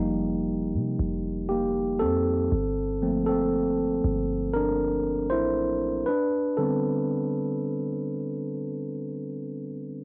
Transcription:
0.00 0.75 F1 loud
0.00 2.48 F3 medium
0.00 2.47 G3 medium
0.00 1.51 A#3 medium
0.00 2.48 D#4 medium
0.00 1.49 G4 medium
0.74 0.98 C3 loud
0.99 2.03 F1 loud
1.49 1.98 A#3 medium
1.49 2.02 G4 medium
1.99 2.49 F2 medium
1.99 3.02 C4 medium
1.99 3.23 A4 medium
2.52 4.00 G1 loud
3.02 3.70 F3 medium
3.02 3.70 A3 soft
3.02 3.70 A#3 soft
3.02 3.27 C4 medium
3.26 4.51 C4 medium
3.26 4.58 A4 medium
4.04 5.33 G1 loud
4.54 5.28 D4 medium
4.54 5.33 A#4 loud
5.30 6.04 A1 medium
5.30 6.04 E4 medium
5.30 6.09 C5 loud
6.06 6.55 D4 medium
6.06 6.59 B4 loud
6.57 10.04 D3 medium
6.57 10.04 G3 soft
6.57 10.04 B3 soft
6.57 9.60 C4 medium
6.57 9.59 A4 medium

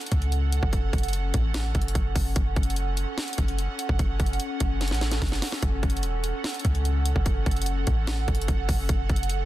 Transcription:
0.00 8.85 C#4 medium
0.00 2.33 A4 medium
0.00 2.33 F#5 medium
0.00 closed hi-hat medium
0.06 closed hi-hat medium
0.12 0.61 C#2 loud
0.12 kick medium
0.12 closed hi-hat medium
0.22 closed hi-hat soft
0.32 closed hi-hat medium
0.52 closed hi-hat medium
0.63 0.92 F#1 loud
0.63 kick medium
0.73 kick loud
0.73 closed hi-hat medium
0.93 1.32 F#1 loud
0.93 kick medium
0.93 closed hi-hat soft
0.98 closed hi-hat medium
1.03 closed hi-hat medium
1.08 closed hi-hat medium
1.13 closed hi-hat medium
1.34 1.73 A1 loud
1.34 kick medium
1.34 closed hi-hat medium
1.54 snare loud
1.54 closed hi-hat medium
1.75 1.94 F#1 loud
1.75 kick medium
1.75 closed hi-hat soft
1.82 closed hi-hat medium
1.88 closed hi-hat medium
1.95 2.15 F#1 loud
1.95 kick loud
1.95 closed hi-hat medium
2.15 2.35 F#1 loud
2.15 kick medium
2.15 open hi-hat medium
2.36 2.56 F#1 loud
2.36 9.45 A4 medium
2.36 5.59 F#5 medium
2.36 kick loud
2.36 closed hi-hat medium
2.56 3.05 F#1 loud
2.56 kick medium
2.56 closed hi-hat soft
2.63 closed hi-hat medium
2.70 closed hi-hat medium
2.76 closed hi-hat medium
2.97 closed hi-hat medium
3.18 snare loud
3.18 closed hi-hat soft
3.23 closed hi-hat medium
3.28 closed hi-hat medium
3.33 closed hi-hat medium
3.38 3.67 F#1 loud
3.38 kick medium
3.38 closed hi-hat medium
3.48 closed hi-hat soft
3.59 closed hi-hat medium
3.79 closed hi-hat medium
3.89 3.99 F#1 loud
3.89 kick medium
3.99 4.19 F#1 loud
3.99 kick loud
3.99 closed hi-hat medium
4.20 4.39 F#1 loud
4.20 kick medium
4.20 closed hi-hat medium
4.26 closed hi-hat medium
4.33 closed hi-hat soft
4.40 closed hi-hat medium
4.60 4.93 F#1 loud
4.60 kick medium
4.60 closed hi-hat medium
4.81 snare medium
4.81 closed hi-hat medium
4.88 5.20 A1 loud
4.88 snare medium
4.88 closed hi-hat medium
4.94 closed hi-hat medium
5.01 snare medium
5.01 closed hi-hat soft
5.12 snare medium
5.12 closed hi-hat medium
5.22 5.41 F#1 loud
5.22 kick loud
5.22 snare medium
5.22 closed hi-hat medium
5.29 snare medium
5.29 closed hi-hat medium
5.35 closed hi-hat medium
5.42 snare loud
5.42 open hi-hat medium
5.52 snare medium
5.62 5.82 F#1 loud
5.62 9.45 F#5 medium
5.62 kick loud
5.62 closed hi-hat medium
5.83 6.05 F#1 loud
5.83 kick medium
5.83 closed hi-hat soft
5.90 closed hi-hat medium
5.97 closed hi-hat medium
6.03 6.32 E1 loud
6.03 closed hi-hat medium
6.24 closed hi-hat medium
6.44 snare loud
6.44 closed hi-hat soft
6.49 closed hi-hat medium
6.54 closed hi-hat medium
6.59 closed hi-hat medium
6.65 7.14 C#2 loud
6.65 kick medium
6.65 closed hi-hat medium
6.75 closed hi-hat soft
6.85 closed hi-hat medium
7.05 closed hi-hat medium
7.16 7.45 F#1 loud
7.16 kick medium
7.26 kick loud
7.26 closed hi-hat medium
7.46 7.85 F#1 loud
7.46 kick medium
7.46 closed hi-hat soft
7.51 closed hi-hat medium
7.56 closed hi-hat medium
7.62 closed hi-hat medium
7.66 closed hi-hat medium
7.87 8.26 A1 loud
7.87 kick medium
7.87 closed hi-hat medium
8.07 snare loud
8.07 closed hi-hat medium
8.28 8.47 F#1 loud
8.28 kick medium
8.28 closed hi-hat soft
8.35 closed hi-hat medium
8.42 closed hi-hat medium
8.48 8.68 F#1 loud
8.48 kick loud
8.48 closed hi-hat medium
8.69 8.88 F#1 loud
8.69 kick medium
8.69 open hi-hat medium
8.89 9.09 F#1 loud
8.89 9.45 C#4 medium
8.89 kick loud
8.89 closed hi-hat medium
9.10 9.45 F#1 loud
9.10 kick medium
9.10 closed hi-hat soft
9.16 closed hi-hat medium
9.23 closed hi-hat medium
9.29 closed hi-hat medium

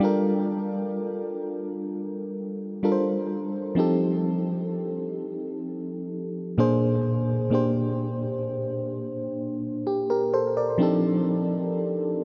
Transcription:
0.00 2.78 G3 medium
0.00 2.79 D4 medium
0.00 2.80 F4 medium
0.00 2.80 A4 medium
0.05 2.81 A#4 medium
2.83 3.77 G3 medium
2.83 3.77 D4 medium
2.83 3.78 F4 medium
2.83 3.78 A4 medium
2.83 2.91 A#4 medium
2.92 3.81 C5 medium
3.75 6.53 F3 medium
3.75 6.54 C4 medium
3.75 6.55 D#4 medium
3.75 6.55 G4 medium
3.80 6.56 A4 medium
6.58 7.49 A#2 medium
6.58 7.50 A#3 medium
6.58 7.51 D4 medium
6.58 7.53 G#4 medium
6.58 7.53 C5 medium
7.50 10.75 A#2 medium
7.50 10.76 A#3 medium
7.50 10.76 D4 medium
7.50 9.37 G4 medium
7.55 9.37 C5 medium
9.87 10.09 G4 medium
10.10 10.33 G4 medium
10.10 10.32 A#4 medium
10.34 10.56 A4 medium
10.34 10.56 C5 medium
10.57 11.02 A#4 medium
10.57 11.01 D5 medium
10.78 12.24 F3 medium
10.78 12.24 C4 medium
10.78 12.24 D4 medium
10.78 12.24 D#4 medium
10.78 12.24 G4 medium
10.83 12.24 A4 medium

